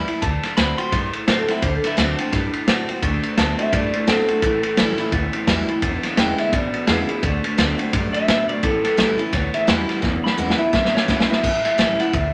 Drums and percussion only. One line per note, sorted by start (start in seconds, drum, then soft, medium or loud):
0.08 ride medium
0.22 kick loud
0.22 ride medium
0.43 snare soft
0.43 ride medium
0.57 snare loud
0.57 ride medium
0.78 ride medium
0.92 kick loud
0.92 snare soft
0.92 ride medium
1.13 ride medium
1.28 snare loud
1.28 ride medium
1.48 snare soft
1.48 ride medium
1.62 kick loud
1.62 ride medium
1.84 snare soft
1.84 ride medium
1.98 snare loud
1.98 ride medium
2.19 ride medium
2.33 kick loud
2.33 snare soft
2.33 ride medium
2.53 ride medium
2.68 snare loud
2.68 ride medium
2.89 ride medium
3.02 kick loud
3.02 ride medium
3.23 ride medium
3.37 snare loud
3.37 ride medium
3.59 ride medium
3.73 kick loud
3.73 ride medium
3.93 ride medium
4.08 snare loud
4.08 ride medium
4.28 ride medium
4.42 kick loud
4.42 ride medium
4.63 ride medium
4.77 snare loud
4.77 ride medium
4.98 snare soft
4.98 ride medium
5.12 kick loud
5.12 ride medium
5.33 ride medium
5.47 kick medium
5.47 snare loud
5.47 ride medium
5.68 ride medium
5.82 kick loud
5.82 ride medium
6.03 snare soft
6.03 ride medium
6.17 snare loud
6.17 ride medium
6.38 snare soft
6.38 ride medium
6.53 kick loud
6.53 ride medium
6.74 ride medium
6.87 snare loud
6.87 ride medium
7.09 ride medium
7.23 kick loud
7.23 ride medium
7.44 ride medium
7.58 snare loud
7.58 ride loud
7.79 ride medium
7.93 kick loud
7.93 ride medium
8.14 ride medium
8.28 snare loud
8.28 ride medium
8.49 ride medium
8.63 kick loud
8.63 ride medium
8.85 snare soft
8.85 ride medium
8.98 snare loud
8.98 ride medium
9.19 ride medium
9.33 kick loud
9.33 snare soft
9.33 ride medium
9.54 ride medium
9.68 snare loud
9.68 ride medium
9.89 snare soft
9.89 ride medium
10.03 kick loud
10.03 snare medium
10.26 snare medium
10.50 snare medium
10.73 kick loud
10.73 snare loud
10.85 snare medium
10.97 snare medium
11.08 kick medium
11.08 snare medium
11.20 snare loud
11.32 snare medium
11.43 kick loud
11.43 crash loud
11.65 snare soft
11.65 ride medium
11.79 snare loud
11.79 ride medium
12.00 snare soft
12.00 ride medium
12.13 kick loud
12.13 ride medium